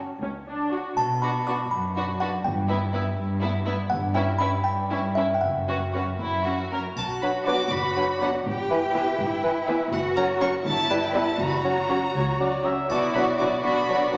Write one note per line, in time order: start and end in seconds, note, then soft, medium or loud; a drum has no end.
0.00 0.15 C#4 soft
0.00 0.16 F#4 soft
0.00 0.16 C#5 soft
0.00 0.69 A#5 soft
0.22 0.82 C#2 soft
0.22 0.30 C#4 soft
0.47 0.72 D4 soft
0.72 0.98 F#4 soft
0.72 0.91 F#4 soft
0.72 0.91 C#5 soft
0.97 1.44 B1 soft
0.97 1.60 B2 soft
0.97 1.20 A5 soft
0.97 triangle soft
1.22 1.30 D4 soft
1.22 1.30 F#4 soft
1.22 1.31 B4 soft
1.22 1.45 B5 soft
1.47 1.55 D4 soft
1.47 1.55 F#4 soft
1.47 1.55 B4 soft
1.47 1.70 D6 medium
1.71 2.33 F#2 soft
1.71 2.17 B5 medium
1.96 2.04 D4 soft
1.96 2.04 F#4 soft
1.96 2.04 B4 soft
2.20 2.29 D4 soft
2.20 2.29 F#4 soft
2.20 2.29 B4 soft
2.20 2.43 F#5 medium
2.44 2.90 G1 medium
2.44 3.05 G2 soft
2.44 3.62 G5 medium
2.68 2.77 B3 soft
2.68 2.76 E4 soft
2.68 2.77 B4 soft
2.93 3.02 B3 soft
2.93 3.01 E4 soft
2.93 3.01 B4 soft
3.17 3.78 G2 medium
3.41 3.50 B3 soft
3.41 3.49 E4 soft
3.41 3.50 B4 soft
3.66 3.74 B3 soft
3.66 3.74 E4 soft
3.66 3.74 B4 soft
3.90 4.36 G1 medium
3.90 4.52 G2 medium
3.90 4.13 F#5 medium
4.15 4.23 C#4 soft
4.15 4.23 E4 medium
4.15 4.23 B4 soft
4.15 4.38 G5 soft
4.38 4.48 C#4 soft
4.38 4.48 E4 soft
4.38 4.49 B4 soft
4.38 4.62 B5 medium
4.64 5.29 G2 medium
4.64 5.12 G5 medium
4.90 4.99 C#4 soft
4.90 4.98 E4 soft
4.90 4.99 B4 soft
5.15 5.24 C#4 soft
5.15 5.24 E4 soft
5.15 5.25 B4 soft
5.15 5.33 E5 medium
5.34 5.42 G5 soft
5.41 5.90 F#1 soft
5.41 6.07 F#2 soft
5.41 6.67 F#5 soft
5.68 5.76 C#4 soft
5.68 5.76 F#4 soft
5.68 5.77 B4 soft
5.94 6.03 C#4 soft
5.94 6.02 F#4 soft
5.94 6.03 B4 soft
6.20 6.68 F#1 soft
6.20 6.84 F#2 soft
6.20 6.44 E4 soft
6.46 6.54 C#4 soft
6.46 6.72 F#4 soft
6.46 6.54 A#4 soft
6.72 6.80 C#4 soft
6.72 6.80 A#4 soft
6.72 6.81 A#4 soft
6.97 7.57 B1 medium
6.97 8.41 F#4 soft
6.97 7.05 A5 medium
6.97 triangle soft
7.22 7.31 F#3 soft
7.22 7.31 D4 soft
7.22 7.32 B4 soft
7.22 7.30 B5 soft
7.46 7.56 F#3 soft
7.46 7.66 B3 soft
7.46 7.56 D4 soft
7.46 7.66 F#4 soft
7.46 7.65 B4 soft
7.46 7.56 B4 soft
7.46 7.65 D5 soft
7.46 7.71 D6 medium
7.71 8.30 F#1 medium
7.71 8.21 B5 medium
7.96 8.05 F#3 soft
7.96 8.05 D4 soft
7.96 8.05 B4 soft
8.21 8.30 F#3 soft
8.21 8.39 B3 soft
8.21 8.31 D4 soft
8.21 8.39 F#4 soft
8.21 8.29 B4 soft
8.21 8.39 B4 soft
8.21 8.39 D5 soft
8.21 8.29 F#5 medium
8.45 9.04 G1 medium
8.45 9.17 G4 medium
8.45 9.65 G5 medium
8.70 8.79 E3 soft
8.70 8.79 E4 soft
8.70 8.79 B4 soft
8.95 9.03 E3 soft
8.95 9.13 B3 soft
8.95 9.03 E4 soft
8.95 9.13 E4 soft
8.95 9.13 B4 soft
8.95 9.04 B4 soft
8.95 9.13 E5 soft
9.19 9.77 G1 medium
9.19 9.92 E4 medium
9.43 9.52 E3 soft
9.43 9.52 E4 soft
9.43 9.52 B4 soft
9.68 9.77 E3 soft
9.68 9.86 B3 soft
9.68 9.76 E4 soft
9.68 9.86 E4 soft
9.68 9.77 B4 soft
9.68 9.86 B4 soft
9.68 9.86 E5 soft
9.92 10.50 F#1 medium
9.92 10.64 F#4 medium
9.92 10.00 F#5 medium
10.16 10.26 F#3 soft
10.16 10.25 C#4 soft
10.16 10.25 A#4 medium
10.16 10.24 A#5 medium
10.40 10.50 F#3 soft
10.40 10.49 C#4 soft
10.40 10.59 C#4 medium
10.40 10.59 F#4 medium
10.40 10.59 A#4 soft
10.40 10.50 A#4 medium
10.40 10.59 C#5 medium
10.40 10.49 C#6 medium
10.65 11.24 G1 medium
10.65 11.38 E4 medium
10.65 11.01 A5 medium
10.89 10.99 G3 soft
10.89 10.98 E4 soft
10.89 10.99 B4 medium
11.03 11.15 G5 soft
11.13 11.24 G3 soft
11.13 11.33 B3 medium
11.13 11.23 E4 soft
11.13 11.33 E4 soft
11.13 11.23 B4 soft
11.13 11.33 B4 medium
11.13 11.33 E5 medium
11.13 11.39 A5 medium
11.39 12.00 F#1 medium
11.39 12.50 F#4 medium
11.39 11.47 A#5 medium
11.47 11.54 B5 medium
11.54 12.65 A#5 medium
11.63 11.74 F#3 soft
11.63 11.73 C#4 soft
11.63 11.74 C#5 soft
11.89 11.99 F#3 soft
11.89 11.98 C#4 soft
11.89 12.08 C#4 soft
11.89 12.09 F#4 soft
11.89 11.99 C#5 soft
11.89 12.09 C#5 soft
12.15 12.75 C#2 medium
12.15 12.38 C#5 medium
12.40 12.49 F#3 soft
12.40 12.49 C#4 soft
12.40 12.67 D5 medium
12.65 12.75 F#3 soft
12.65 12.83 C#4 soft
12.65 12.74 C#4 soft
12.65 12.83 F#4 soft
12.65 12.83 C#5 soft
12.65 12.90 E5 soft
12.89 12.98 B1 soft
12.89 13.13 B3 soft
12.89 13.60 E4 soft
12.89 13.14 F#4 soft
12.89 13.13 F#4 soft
12.89 13.13 D5 soft
12.89 12.98 A5 medium
12.89 triangle soft
13.14 13.23 B1 soft
13.14 13.24 F#3 soft
13.14 13.39 B3 soft
13.14 13.24 D4 soft
13.14 13.38 F#4 soft
13.14 13.24 B4 soft
13.14 13.38 D5 soft
13.14 13.22 B5 soft
13.38 13.48 B1 soft
13.38 13.49 F#3 soft
13.38 13.63 B3 soft
13.38 13.49 D4 soft
13.38 13.62 F#4 soft
13.38 13.63 F#4 soft
13.38 13.48 B4 soft
13.38 13.62 D5 soft
13.38 13.46 D6 medium
13.63 13.73 B1 soft
13.63 13.88 B3 soft
13.63 14.17 D4 soft
13.63 13.87 F#4 soft
13.63 13.87 D5 soft
13.63 14.12 B5 medium
13.88 13.97 B1 soft
13.88 13.98 F#3 soft
13.88 14.12 B3 soft
13.88 13.97 D4 soft
13.88 14.11 F#4 soft
13.88 14.12 F#4 soft
13.88 13.97 B4 soft
13.88 14.12 D5 soft
14.12 14.17 B1 soft
14.12 14.17 F#3 soft
14.12 14.17 B3 soft
14.12 14.17 D4 soft
14.12 14.17 F#4 soft
14.12 14.17 B4 soft
14.12 14.17 D5 soft
14.12 14.17 F#5 medium